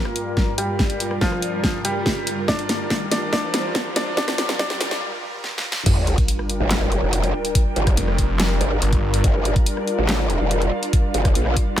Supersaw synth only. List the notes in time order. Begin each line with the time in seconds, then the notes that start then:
Already playing: G2 G3 F4 A#4
5.86 G3 D4 F4 A#4